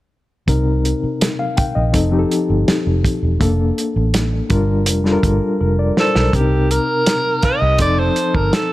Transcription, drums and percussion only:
0, 0, Header, 1, 2, 480
1, 0, Start_track
1, 0, Tempo, 731707
1, 316, Time_signature, 4, 2, 24, 8
1, 5725, End_track
2, 0, Start_track
2, 0, Title_t, "Drums"
2, 313, Note_on_c, 9, 36, 89
2, 314, Note_on_c, 9, 42, 74
2, 379, Note_off_c, 9, 36, 0
2, 380, Note_off_c, 9, 42, 0
2, 558, Note_on_c, 9, 42, 58
2, 623, Note_off_c, 9, 42, 0
2, 796, Note_on_c, 9, 42, 92
2, 801, Note_on_c, 9, 38, 110
2, 862, Note_off_c, 9, 42, 0
2, 867, Note_off_c, 9, 38, 0
2, 1032, Note_on_c, 9, 42, 66
2, 1037, Note_on_c, 9, 36, 104
2, 1098, Note_off_c, 9, 42, 0
2, 1103, Note_off_c, 9, 36, 0
2, 1271, Note_on_c, 9, 42, 97
2, 1273, Note_on_c, 9, 36, 84
2, 1337, Note_off_c, 9, 42, 0
2, 1338, Note_off_c, 9, 36, 0
2, 1519, Note_on_c, 9, 42, 65
2, 1584, Note_off_c, 9, 42, 0
2, 1758, Note_on_c, 9, 42, 70
2, 1759, Note_on_c, 9, 38, 95
2, 1824, Note_off_c, 9, 38, 0
2, 1824, Note_off_c, 9, 42, 0
2, 1998, Note_on_c, 9, 36, 89
2, 2003, Note_on_c, 9, 42, 69
2, 2063, Note_off_c, 9, 36, 0
2, 2069, Note_off_c, 9, 42, 0
2, 2235, Note_on_c, 9, 36, 91
2, 2236, Note_on_c, 9, 42, 68
2, 2300, Note_off_c, 9, 36, 0
2, 2302, Note_off_c, 9, 42, 0
2, 2480, Note_on_c, 9, 42, 61
2, 2546, Note_off_c, 9, 42, 0
2, 2715, Note_on_c, 9, 42, 103
2, 2720, Note_on_c, 9, 38, 94
2, 2781, Note_off_c, 9, 42, 0
2, 2786, Note_off_c, 9, 38, 0
2, 2950, Note_on_c, 9, 42, 61
2, 2954, Note_on_c, 9, 36, 99
2, 3016, Note_off_c, 9, 42, 0
2, 3020, Note_off_c, 9, 36, 0
2, 3189, Note_on_c, 9, 42, 109
2, 3255, Note_off_c, 9, 42, 0
2, 3317, Note_on_c, 9, 38, 32
2, 3383, Note_off_c, 9, 38, 0
2, 3433, Note_on_c, 9, 36, 93
2, 3434, Note_on_c, 9, 42, 56
2, 3499, Note_off_c, 9, 36, 0
2, 3500, Note_off_c, 9, 42, 0
2, 3918, Note_on_c, 9, 38, 76
2, 3983, Note_off_c, 9, 38, 0
2, 4038, Note_on_c, 9, 38, 80
2, 4103, Note_off_c, 9, 38, 0
2, 4155, Note_on_c, 9, 36, 93
2, 4156, Note_on_c, 9, 42, 74
2, 4220, Note_off_c, 9, 36, 0
2, 4221, Note_off_c, 9, 42, 0
2, 4400, Note_on_c, 9, 42, 64
2, 4466, Note_off_c, 9, 42, 0
2, 4634, Note_on_c, 9, 42, 96
2, 4639, Note_on_c, 9, 38, 95
2, 4700, Note_off_c, 9, 42, 0
2, 4705, Note_off_c, 9, 38, 0
2, 4871, Note_on_c, 9, 42, 60
2, 4876, Note_on_c, 9, 36, 92
2, 4876, Note_on_c, 9, 38, 32
2, 4937, Note_off_c, 9, 42, 0
2, 4941, Note_off_c, 9, 36, 0
2, 4942, Note_off_c, 9, 38, 0
2, 5107, Note_on_c, 9, 42, 87
2, 5111, Note_on_c, 9, 36, 87
2, 5172, Note_off_c, 9, 42, 0
2, 5176, Note_off_c, 9, 36, 0
2, 5354, Note_on_c, 9, 42, 58
2, 5419, Note_off_c, 9, 42, 0
2, 5474, Note_on_c, 9, 36, 70
2, 5540, Note_off_c, 9, 36, 0
2, 5595, Note_on_c, 9, 42, 64
2, 5596, Note_on_c, 9, 38, 91
2, 5661, Note_off_c, 9, 42, 0
2, 5662, Note_off_c, 9, 38, 0
2, 5725, End_track
0, 0, End_of_file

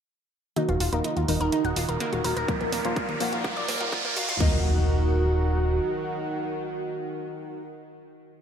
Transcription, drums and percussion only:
0, 0, Header, 1, 2, 480
1, 0, Start_track
1, 0, Key_signature, -6, "minor"
1, 0, Tempo, 480000
1, 565, Time_signature, 4, 2, 24, 8
1, 8417, End_track
2, 0, Start_track
2, 0, Title_t, "Drums"
2, 564, Note_on_c, 9, 42, 43
2, 564, Note_on_c, 9, 47, 49
2, 664, Note_off_c, 9, 42, 0
2, 664, Note_off_c, 9, 47, 0
2, 686, Note_on_c, 9, 42, 22
2, 686, Note_on_c, 9, 64, 86
2, 786, Note_off_c, 9, 42, 0
2, 786, Note_off_c, 9, 64, 0
2, 804, Note_on_c, 9, 46, 99
2, 904, Note_off_c, 9, 46, 0
2, 926, Note_on_c, 9, 42, 33
2, 1026, Note_off_c, 9, 42, 0
2, 1044, Note_on_c, 9, 42, 45
2, 1044, Note_on_c, 9, 47, 51
2, 1144, Note_off_c, 9, 42, 0
2, 1144, Note_off_c, 9, 47, 0
2, 1166, Note_on_c, 9, 42, 21
2, 1266, Note_off_c, 9, 42, 0
2, 1284, Note_on_c, 9, 46, 95
2, 1384, Note_off_c, 9, 46, 0
2, 1406, Note_on_c, 9, 42, 34
2, 1506, Note_off_c, 9, 42, 0
2, 1524, Note_on_c, 9, 42, 46
2, 1524, Note_on_c, 9, 47, 60
2, 1624, Note_off_c, 9, 42, 0
2, 1624, Note_off_c, 9, 47, 0
2, 1646, Note_on_c, 9, 42, 22
2, 1746, Note_off_c, 9, 42, 0
2, 1764, Note_on_c, 9, 46, 102
2, 1864, Note_off_c, 9, 46, 0
2, 1886, Note_on_c, 9, 42, 34
2, 1986, Note_off_c, 9, 42, 0
2, 2004, Note_on_c, 9, 42, 47
2, 2004, Note_on_c, 9, 47, 68
2, 2104, Note_off_c, 9, 42, 0
2, 2104, Note_off_c, 9, 47, 0
2, 2126, Note_on_c, 9, 42, 23
2, 2226, Note_off_c, 9, 42, 0
2, 2244, Note_on_c, 9, 46, 90
2, 2344, Note_off_c, 9, 46, 0
2, 2366, Note_on_c, 9, 42, 33
2, 2466, Note_off_c, 9, 42, 0
2, 2484, Note_on_c, 9, 36, 123
2, 2484, Note_on_c, 9, 42, 42
2, 2584, Note_off_c, 9, 36, 0
2, 2585, Note_off_c, 9, 42, 0
2, 2606, Note_on_c, 9, 42, 23
2, 2606, Note_on_c, 9, 64, 88
2, 2706, Note_off_c, 9, 42, 0
2, 2706, Note_off_c, 9, 64, 0
2, 2724, Note_on_c, 9, 46, 112
2, 2724, Note_on_c, 9, 47, 77
2, 2824, Note_off_c, 9, 46, 0
2, 2824, Note_off_c, 9, 47, 0
2, 2846, Note_on_c, 9, 42, 33
2, 2946, Note_off_c, 9, 42, 0
2, 2964, Note_on_c, 9, 36, 127
2, 2964, Note_on_c, 9, 42, 44
2, 2964, Note_on_c, 9, 47, 82
2, 3064, Note_off_c, 9, 36, 0
2, 3064, Note_off_c, 9, 42, 0
2, 3064, Note_off_c, 9, 47, 0
2, 3086, Note_on_c, 9, 42, 23
2, 3186, Note_off_c, 9, 42, 0
2, 3204, Note_on_c, 9, 46, 97
2, 3204, Note_on_c, 9, 47, 89
2, 3304, Note_off_c, 9, 46, 0
2, 3304, Note_off_c, 9, 47, 0
2, 3326, Note_on_c, 9, 42, 34
2, 3426, Note_off_c, 9, 42, 0
2, 3444, Note_on_c, 9, 36, 127
2, 3444, Note_on_c, 9, 42, 46
2, 3444, Note_on_c, 9, 47, 92
2, 3544, Note_off_c, 9, 36, 0
2, 3544, Note_off_c, 9, 42, 0
2, 3544, Note_off_c, 9, 47, 0
2, 3566, Note_on_c, 9, 42, 23
2, 3566, Note_on_c, 9, 47, 82
2, 3666, Note_off_c, 9, 42, 0
2, 3666, Note_off_c, 9, 47, 0
2, 3684, Note_on_c, 9, 46, 111
2, 3684, Note_on_c, 9, 47, 99
2, 3784, Note_off_c, 9, 46, 0
2, 3784, Note_off_c, 9, 47, 0
2, 3807, Note_on_c, 9, 42, 34
2, 3807, Note_on_c, 9, 47, 88
2, 3907, Note_off_c, 9, 42, 0
2, 3907, Note_off_c, 9, 47, 0
2, 3925, Note_on_c, 9, 36, 127
2, 3925, Note_on_c, 9, 42, 48
2, 3925, Note_on_c, 9, 47, 102
2, 4025, Note_off_c, 9, 36, 0
2, 4025, Note_off_c, 9, 42, 0
2, 4025, Note_off_c, 9, 47, 0
2, 4047, Note_on_c, 9, 42, 23
2, 4047, Note_on_c, 9, 47, 94
2, 4047, Note_on_c, 9, 64, 75
2, 4147, Note_off_c, 9, 42, 0
2, 4147, Note_off_c, 9, 47, 0
2, 4147, Note_off_c, 9, 64, 0
2, 4165, Note_on_c, 9, 46, 96
2, 4165, Note_on_c, 9, 47, 104
2, 4265, Note_off_c, 9, 46, 0
2, 4265, Note_off_c, 9, 47, 0
2, 4287, Note_on_c, 9, 42, 36
2, 4287, Note_on_c, 9, 47, 97
2, 4387, Note_off_c, 9, 42, 0
2, 4387, Note_off_c, 9, 47, 0
2, 4405, Note_on_c, 9, 36, 112
2, 4405, Note_on_c, 9, 49, 90
2, 4505, Note_off_c, 9, 36, 0
2, 4505, Note_off_c, 9, 49, 0
2, 8417, End_track
0, 0, End_of_file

